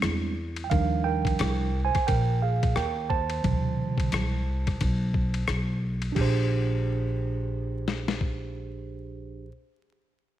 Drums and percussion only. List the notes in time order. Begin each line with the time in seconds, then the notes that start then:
0.02 cross-stick, hi-hat pedal, ride
0.56 ride
0.71 kick, ride
1.25 kick, ride
1.39 cross-stick, hi-hat pedal, ride
1.95 kick, cross-stick, ride
2.08 kick, ride
2.63 kick, ride
2.76 cross-stick, hi-hat pedal, ride
3.10 kick
3.30 ride
3.44 kick, ride
3.98 kick, ride
4.12 cross-stick, hi-hat pedal, ride
4.67 kick, cross-stick, ride
4.81 kick, ride
5.14 kick
5.34 ride
5.48 cross-stick, hi-hat pedal, ride
6.02 ride
6.16 kick, crash
7.88 snare
8.08 snare
8.21 kick